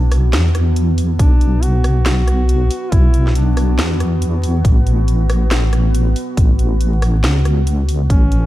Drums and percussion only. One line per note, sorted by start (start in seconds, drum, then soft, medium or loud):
0.12 cross-stick medium
0.12 open hi-hat medium
0.33 snare loud
0.33 closed hi-hat medium
0.55 cross-stick soft
0.55 closed hi-hat medium
0.76 closed hi-hat medium
0.98 open hi-hat medium
1.19 kick loud
1.19 closed hi-hat medium
1.41 closed hi-hat medium
1.63 closed hi-hat medium
1.84 cross-stick medium
1.84 open hi-hat medium
2.06 snare loud
2.06 closed hi-hat medium
2.28 cross-stick soft
2.28 closed hi-hat medium
2.49 closed hi-hat medium
2.71 open hi-hat medium
2.92 kick loud
2.92 closed hi-hat medium
3.14 closed hi-hat medium
3.27 snare soft
3.35 closed hi-hat medium
3.57 cross-stick medium
3.57 open hi-hat medium
3.79 snare loud
3.79 closed hi-hat medium
4.00 cross-stick soft
4.00 closed hi-hat medium
4.22 closed hi-hat medium
4.43 open hi-hat medium
4.65 kick loud
4.65 closed hi-hat medium
4.87 closed hi-hat soft
5.08 closed hi-hat medium
5.30 cross-stick medium
5.30 open hi-hat medium
5.51 snare loud
5.51 closed hi-hat medium
5.73 cross-stick medium
5.73 closed hi-hat soft
5.95 closed hi-hat medium
6.16 open hi-hat medium
6.37 kick loud
6.37 closed hi-hat medium
6.59 closed hi-hat soft
6.81 closed hi-hat medium
7.02 cross-stick medium
7.02 open hi-hat medium
7.24 snare loud
7.24 closed hi-hat medium
7.45 cross-stick medium
7.45 closed hi-hat soft
7.67 closed hi-hat medium
7.89 open hi-hat medium
8.10 kick loud
8.10 closed hi-hat medium
8.32 closed hi-hat medium